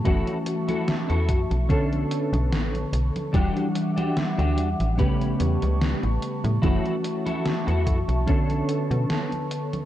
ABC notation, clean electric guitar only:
X:1
M:4/4
L:1/16
Q:"Swing 16ths" 1/4=73
K:F#phr
V:1 name="Clean electric guitar"
[EFA]2 z [EFA] z [EFA] z2 [CDA]4 z4 | [DFG]2 z [DFG] z [DFG] z2 [CGB]4 z4 | [EFA]2 z [EFA] z [EFA] z2 [CDA]4 z4 |]